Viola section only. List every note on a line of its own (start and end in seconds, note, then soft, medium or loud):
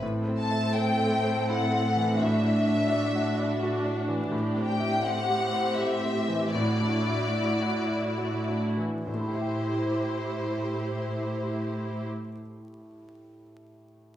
0.02 2.17 C4 soft
0.02 2.17 A4 soft
2.20 5.04 D4 soft
2.20 4.28 F#4 soft
4.33 6.51 G4 soft
5.04 6.54 C4 soft
6.54 8.80 E4 soft
6.54 8.80 F#4 soft
9.09 12.08 E4 soft
9.09 12.08 G4 soft